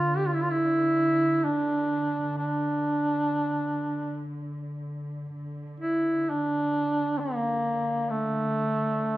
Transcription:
Already playing: D3 F4
0.17 G4
0.27 F4
0.34 E4
0.42 F4
0.51 E4
1.44 D4
2.38 D4
5.34 D3
5.80 E4
6.29 D4
7.20 A#3
8.10 A3

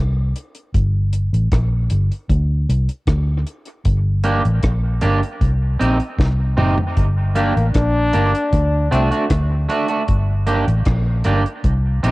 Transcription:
Already playing: C2
0.36 closed hi-hat
0.55 closed hi-hat
0.74 G1, kick, closed hi-hat
1.13 closed hi-hat
1.33 A1, closed hi-hat
1.52 A#1, kick, cross-stick, closed hi-hat
1.90 G1, closed hi-hat
2.12 closed hi-hat
2.30 D2, kick, closed hi-hat
2.69 C2, closed hi-hat
2.89 closed hi-hat
3.07 D2, kick, cross-stick, closed hi-hat
3.47 closed hi-hat
3.65 closed hi-hat
3.85 G1, kick, closed hi-hat
4.24 A#3 D4 G4, closed hi-hat
4.45 A1, closed hi-hat
4.63 A#1, kick, cross-stick, closed hi-hat
5.01 G1 A#3 D4 G4, closed hi-hat
5.23 closed hi-hat
5.41 C2, kick, closed hi-hat
5.79 A#1 C4 D#4 G4, closed hi-hat
6.00 closed hi-hat
6.19 C2, kick, snare
6.57 F#1 C4 D#4 G4, mid tom
6.78 floor tom
6.97 G1, kick, closed hi-hat
7.35 A#3 D4 G4, closed hi-hat
7.57 A1, closed hi-hat
7.74 A#1 D4, kick, cross-stick, closed hi-hat
8.13 G1 A#3 D4 G4, closed hi-hat
8.35 closed hi-hat
8.53 D2, kick, closed hi-hat
8.91 C2 A3 C4 D4 F#4, closed hi-hat
9.11 A3 D4 F#4, closed hi-hat
9.30 D2, kick, cross-stick, closed hi-hat
9.69 A3 D4 F#4, closed hi-hat
9.88 A3 D4 F#4, closed hi-hat
10.08 G1, kick, closed hi-hat
10.47 A#3 D4 G4, closed hi-hat
10.68 A1, closed hi-hat
10.85 A#1, kick, cross-stick, closed hi-hat
11.24 G1 A#3 D4 G4, closed hi-hat
11.46 closed hi-hat
11.64 C2, kick, closed hi-hat
12.03 A#1 C4 D#4 G4, closed hi-hat

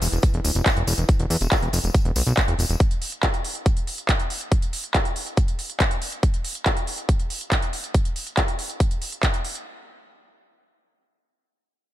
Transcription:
0.02 E1, open hi-hat, tambourine
0.12 E1, closed hi-hat, tambourine
0.22 kick, closed hi-hat, tambourine
0.34 E1, closed hi-hat
0.44 D1, open hi-hat, tambourine
0.55 E1, closed hi-hat, tambourine
0.66 kick, clap, closed hi-hat, tambourine
0.77 E1, closed hi-hat
0.87 E1, open hi-hat, tambourine
0.98 E1, closed hi-hat, tambourine
1.09 kick, closed hi-hat, tambourine
1.19 E1, closed hi-hat
1.30 E2, open hi-hat, tambourine
1.41 E1, closed hi-hat, tambourine
1.52 kick, clap, closed hi-hat, tambourine
1.62 E1, closed hi-hat
1.73 F1, open hi-hat, tambourine
1.84 E1, closed hi-hat, tambourine
1.94 kick, closed hi-hat, tambourine
2.05 E1, closed hi-hat
2.16 B1, open hi-hat, tambourine
2.26 B1, closed hi-hat, tambourine
2.37 kick, clap, closed hi-hat
2.48 E1, closed hi-hat
2.59 E1, open hi-hat, tambourine
2.69 E1, closed hi-hat, tambourine
2.80 kick, closed hi-hat
2.91 closed hi-hat
3.02 open hi-hat
3.12 closed hi-hat
3.23 kick, clap, closed hi-hat
3.34 closed hi-hat
3.44 open hi-hat
3.55 closed hi-hat
3.66 kick, closed hi-hat
3.77 closed hi-hat
3.87 open hi-hat
3.98 closed hi-hat
4.09 kick, clap, closed hi-hat
4.19 closed hi-hat
4.30 open hi-hat
4.41 closed hi-hat
4.52 kick, closed hi-hat
4.62 closed hi-hat
4.73 open hi-hat
4.84 closed hi-hat
4.94 kick, clap, closed hi-hat
5.05 closed hi-hat
5.16 open hi-hat
5.27 closed hi-hat
5.37 kick, closed hi-hat
5.48 closed hi-hat
5.59 open hi-hat
5.70 closed hi-hat
5.80 kick, clap, closed hi-hat
5.91 closed hi-hat
6.02 open hi-hat
6.12 closed hi-hat
6.23 kick, closed hi-hat
6.34 closed hi-hat
6.44 open hi-hat
6.55 closed hi-hat
6.66 kick, clap, closed hi-hat
6.77 closed hi-hat
6.87 open hi-hat
6.98 closed hi-hat
7.09 kick, closed hi-hat
7.20 closed hi-hat
7.30 open hi-hat
7.41 closed hi-hat
7.52 kick, clap, closed hi-hat
7.62 closed hi-hat
7.73 open hi-hat
7.84 closed hi-hat
7.94 kick, closed hi-hat
8.05 closed hi-hat
8.16 open hi-hat
8.27 closed hi-hat
8.37 kick, clap, closed hi-hat
8.48 closed hi-hat
8.59 open hi-hat
8.70 closed hi-hat
8.80 kick, closed hi-hat
8.91 closed hi-hat
9.02 open hi-hat
9.12 closed hi-hat
9.23 kick, clap, closed hi-hat
9.34 closed hi-hat
9.44 open hi-hat
9.55 closed hi-hat

